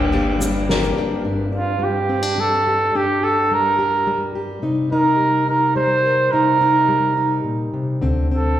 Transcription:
Already playing: G1 G2 D3 G3 A#3 D4 G4
0.12 G3 A#3 D4 G4, ride
0.39 G3 A#3 D4 G4, shaker
0.43 G3
0.69 G3 A#3 D4 G4 A#4, snare, ride
0.84 shaker
0.97 G3 A#3 D4 G4
1.24 G2 D4
1.52 D4 F4
1.79 G3
1.83 G4
2.09 C4
2.23 D4
2.38 G3 A4
2.67 G4
2.95 G2 D4 G4
3.23 G4 A4
3.52 G3 A#4
3.79 G4
4.07 G3
4.35 G4
4.62 C3 D#4
4.92 D#4 A#4
5.19 G3
5.48 D#4 A#4
5.76 G3 C5
6.06 A#4
6.31 C3 D#4 A#4
6.61 D#4
6.89 G3
7.17 D#4
7.44 A#2
7.73 C3
8.01 D2 D3 C4
8.31 C4 A4

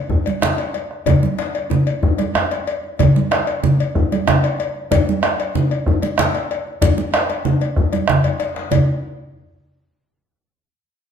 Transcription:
0.09 bombo low, djembe slap, djembe bass
0.26 cowbell, high conga
0.42 bombo rim, djembe slap, djembe tone, low conga
0.58 cowbell
0.74 cowbell, high conga
0.91 bombo rim
1.06 bombo low, cowbell, djembe tone, djembe bass, low conga
1.23 high conga
1.39 cowbell, djembe slap
1.55 cowbell
1.70 djembe slap, djembe tone, high conga, low conga
1.87 cowbell, djembe slap
2.03 bombo rim, bombo low, djembe bass
2.18 cowbell, djembe slap, high conga
2.35 bombo rim, djembe slap, djembe tone, high conga
2.51 cowbell, high conga
2.67 cowbell
2.84 djembe slap
2.99 bombo low, cowbell, djembe tone, djembe bass, low conga
3.16 high conga
3.31 bombo rim, cowbell, djembe slap
3.47 cowbell
3.63 djembe slap, djembe tone, high conga, low conga
3.80 cowbell, djembe slap
3.95 bombo rim, bombo low, djembe bass
4.12 cowbell, djembe slap, high conga
4.27 bombo rim, djembe slap, djembe tone, high conga, low conga
4.44 cowbell, high conga
4.60 cowbell
4.75 djembe slap
4.91 bombo low, cowbell, djembe tone, djembe bass, low conga
5.09 high conga
5.23 bombo rim, cowbell, djembe slap
5.40 cowbell
5.55 djembe slap, djembe tone, high conga, low conga
5.71 cowbell, djembe slap
5.86 bombo rim, bombo low, djembe bass
6.02 cowbell, djembe slap, high conga
6.18 bombo rim, djembe slap, high conga, djembe tone, low conga
6.35 cowbell, high conga
6.51 cowbell
6.67 djembe slap
6.81 bombo low, cowbell, djembe slap, djembe tone, low conga, djembe bass
6.98 high conga
7.14 bombo rim, cowbell, djembe slap, high conga
7.30 cowbell, high conga
7.45 high conga, djembe tone, low conga
7.61 cowbell, djembe slap, high conga
7.76 bombo rim, bombo low, djembe slap, djembe bass
7.93 cowbell, high conga, djembe bass
8.08 bombo rim, djembe bass, low conga
8.24 cowbell, high conga, djembe bass
8.40 bombo rim, cowbell, djembe slap, high conga
8.55 bombo rim, djembe slap
8.71 bombo low, cowbell, low conga, djembe bass

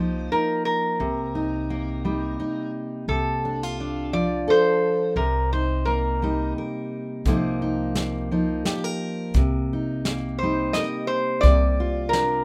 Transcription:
Already playing: C2 F3 A#3 D#4 C5
0.32 D#4 A#4
0.65 A#4
1.00 C2 C3
1.35 D#4
1.70 A#3
2.05 G3 D#4
2.40 D#4
3.08 C2 C3 A4
3.45 D4
3.63 F4
3.80 D4
4.13 F3 F4 D5
4.48 A4 C5
5.16 C2 C3 A#4
5.53 D#4 C5
5.85 A#3 A#4
6.22 G3 D#4
6.58 A#4
7.25 C2 C3 F3 A#3 D#4, kick, closed hi-hat
7.30 A#4
7.62 D#4
7.95 A#3, snare, closed hi-hat
8.31 F3 D#4
8.65 G4, snare, closed hi-hat
8.84 A#4
9.34 C2 C3, kick, closed hi-hat
9.73 D#4
10.05 A#3, snare, closed hi-hat
10.39 G3 C5
10.43 D#4
10.73 A#4 D#5, snare, closed hi-hat
11.07 C5
11.41 C2 C3 D5, kick, closed hi-hat
11.80 F4
12.09 A#4
12.13 D4, snare, closed hi-hat

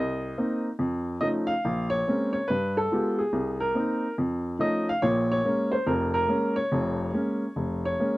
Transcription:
Already playing: C2 D#5
0.38 A#3 C4 D#4
0.79 F2
1.21 F3 A3 C#4 D#4 D#5
1.47 F5
1.65 A#1
1.90 C#5
2.07 G#3 A#3 C4 C#4
2.33 C#5
2.48 G2 B4
2.77 A4
2.92 G#3 B3 F4 G4
3.19 G#4
3.33 C2
3.60 A#4
3.75 A#3 C4 D#4
4.18 F2
4.59 F3 A3 C#4 D#4 D#5
4.89 F5
5.02 A#1 A#2 C#5
5.32 C#5
5.45 G#3 A#3 C#4
5.72 C5
5.87 F1 F2 A#4
6.14 A#4
6.28 G#3 A#3 C#4
6.56 C#5
6.72 F1 F2
7.13 G#3 A#3 C#4
7.56 F1
7.85 C#5
8.00 G#3 A#3 C#4

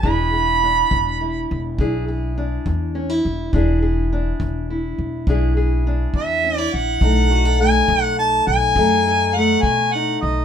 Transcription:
0.01 E1 E2 D4 E4 G#4 B5, kick
0.33 G#4
0.63 D4
0.91 E1 E2, kick
1.21 E4
1.51 E1
1.78 B1 E2 D4 E4 G#4, kick
2.08 G#4
2.38 D4
2.66 E2, kick
2.95 C#4
3.09 E4
3.25 E1
3.53 E1 E2 D4 E4 G#4, kick
3.82 G#4
4.13 D4
4.40 E1 E2, kick
4.70 E4
4.98 E1
5.27 B1 E2 D4 E4 G#4, kick
5.57 G#4
5.87 D4
6.14 E2 E5, kick
6.44 C#4
6.58 E4 D5
6.74 A#1 F#5
7.01 B1 B2 A3 D#4 A4, kick
7.31 F#4
7.45 A4
7.60 A3 G#5
7.88 B1 B2, kick
8.03 F#5
8.19 D#4 A5
8.47 B1 G#5
8.76 F#2 B2 A3 D#4 A4, kick
9.07 A4
9.34 A3 F#5
9.62 B2 G#5, kick
9.92 D#4 F#5
10.21 B1 D#5

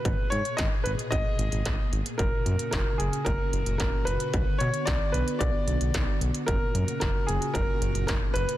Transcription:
Already playing: A#2 B4
0.05 G#1 B2 G#4, kick, closed hi-hat
0.30 G#2 C#5, closed hi-hat
0.45 closed hi-hat
0.57 G#1 D#5, kick, snare, closed hi-hat
0.84 G#1 B4, closed hi-hat
0.99 closed hi-hat
1.11 G#1 D#5, kick, closed hi-hat
1.39 G#1, closed hi-hat
1.52 G#1, closed hi-hat
1.66 G#1, kick, snare, closed hi-hat
1.92 G#1, closed hi-hat
2.06 closed hi-hat
2.18 F#1 C#3 F#4 A#4, kick, closed hi-hat
2.46 F#2, closed hi-hat
2.59 closed hi-hat
2.71 F#1 A#4, kick, snare, closed hi-hat
2.98 F#1 G#4, closed hi-hat
3.13 closed hi-hat
3.25 F#1 A#4, kick, closed hi-hat
3.53 F#1, closed hi-hat
3.66 F#1, closed hi-hat
3.78 F#1 A#4, kick, snare, closed hi-hat
4.05 F#1 B4, closed hi-hat
4.20 closed hi-hat
4.34 B1 D3 B3, kick, closed hi-hat
4.58 B2 C#5, closed hi-hat
4.74 closed hi-hat
4.86 B1 D5, kick, snare, closed hi-hat
5.12 B1 B4, closed hi-hat
5.28 closed hi-hat
5.39 B1 D5, kick, closed hi-hat
5.68 B1, closed hi-hat
5.81 B1, closed hi-hat
5.94 B1, kick, snare, closed hi-hat
6.21 B1, closed hi-hat
6.34 closed hi-hat
6.46 F#1 A#2 C#3 F#4 A#4, kick, closed hi-hat
6.75 F#2, closed hi-hat
6.88 closed hi-hat
7.00 F#1 A#4, kick, snare, closed hi-hat
7.27 F#1 G#4, closed hi-hat
7.42 closed hi-hat
7.54 F#1 A#4, kick, closed hi-hat
7.82 F#1, closed hi-hat
7.95 F#1, closed hi-hat
8.07 F#1 A#4, kick, snare, closed hi-hat
8.34 F#1 B4, closed hi-hat
8.49 closed hi-hat

